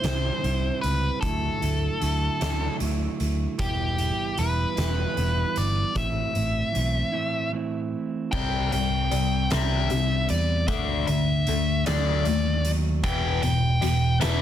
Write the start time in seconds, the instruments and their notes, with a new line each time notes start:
Already playing: lead electric guitar C5
0.01 picked electric bass C2, clean electric guitar C3 G3 C4 E4, snare, closed hi-hat
0.42 picked electric bass C2, clean electric guitar C3 G3 C4 E4, closed hi-hat
0.81 picked electric bass C#2, lead electric guitar B4, closed hi-hat
1.21 picked electric bass D2, clean electric guitar D3 F#3 A3, lead electric guitar A4, kick, closed hi-hat
1.25 clean electric guitar E4
1.61 picked electric bass D2, clean electric guitar F#3 A3 E4, closed hi-hat
2.00 picked electric bass D2, clean electric guitar D3 F#3 A3 E4, closed hi-hat
2.40 picked electric bass D2, clean electric guitar D3 F#3 A3 E4, snare, closed hi-hat
2.79 picked electric bass D2, clean electric guitar D3 F#3 A3 E4, closed hi-hat
3.20 picked electric bass D2, closed hi-hat
3.58 picked electric bass E1, clean electric guitar E3 G3 B3 E4, lead electric guitar G4, kick, closed hi-hat
3.98 clean electric guitar G3 B3 E4, closed hi-hat
4.37 picked electric bass E1, clean electric guitar E3 G3 B3 E4, lead electric guitar B4, closed hi-hat
4.76 picked electric bass E1, clean electric guitar E3 G3 B3 E4, snare, closed hi-hat
5.15 picked electric bass E1, clean electric guitar E3 G3 B3 E4, closed hi-hat
5.56 picked electric bass G1, lead electric guitar D5, closed hi-hat
5.94 picked electric bass A1, clean electric guitar A2 E3 A3 C4 E4, lead electric guitar E5, kick, closed hi-hat
6.33 picked electric bass A1, clean electric guitar A3 C4 E4, closed hi-hat
6.72 picked electric bass B1, clean electric guitar E3 A3 C4 E4, closed hi-hat
7.12 clean electric guitar A2 E3 A3 C4 E4
7.52 clean electric guitar E3 A3 C4 E4
8.32 picked electric bass C2, clean electric guitar C3, overdriven electric guitar C3 G3 C4, lead electric guitar G5, kick, crash
8.72 picked electric bass C2, clean electric guitar C3, overdriven electric guitar C3 G3, lead electric guitar G5, closed hi-hat
9.11 picked electric bass C2, overdriven electric guitar C3 G3, clean electric guitar C4, closed hi-hat
9.50 picked electric bass C2, overdriven electric guitar C3 G3 C4, clean electric guitar G3, lead electric guitar E5, snare, closed hi-hat
9.90 picked electric bass C2, overdriven electric guitar C3 G3, clean electric guitar C4, closed hi-hat
10.29 picked electric bass E2, clean electric guitar G3, lead electric guitar D5, closed hi-hat
10.68 picked electric bass D2, overdriven electric guitar D3 A3 D4, clean electric guitar D3, lead electric guitar E5, kick, closed hi-hat
11.07 picked electric bass D2, clean electric guitar D3, overdriven electric guitar D3 A3, lead electric guitar E5, closed hi-hat
11.47 picked electric bass D2, overdriven electric guitar D3 A3, clean electric guitar A3, closed hi-hat
11.86 picked electric bass D2, overdriven electric guitar D3 A3 D4, clean electric guitar F#3, lead electric guitar D5, snare, closed hi-hat
12.25 picked electric bass D#2, overdriven electric guitar D3 A3, clean electric guitar A3, closed hi-hat
12.65 clean electric guitar F#3, closed hi-hat
13.04 picked electric bass E1, overdriven electric guitar E2 B2 E3, lead electric guitar G5, kick, closed hi-hat
13.42 picked electric bass E1, overdriven electric guitar E2 B2, lead electric guitar G5, closed hi-hat
13.81 picked electric bass E1, overdriven electric guitar E2 B2, closed hi-hat
14.20 picked electric bass E1, overdriven electric guitar E2 B2 E3, lead electric guitar E5, snare, closed hi-hat